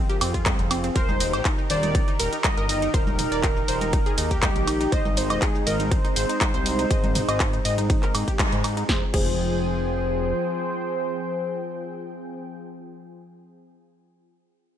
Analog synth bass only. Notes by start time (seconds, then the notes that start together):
0.21 F2
0.59 F1
0.96 D#1
1.34 A#1
1.70 D#1
2.20 D#1
2.58 G1
2.94 D#1
3.32 D#1
3.68 D#1
4.18 D#2
4.56 A#1
4.92 G#1
5.30 D#1
5.67 G#1
6.16 G#1
6.54 C2
6.91 G#1
7.29 G#1
7.65 G#1
8.15 G#2
8.53 G#2
8.89 F1
9.14 F1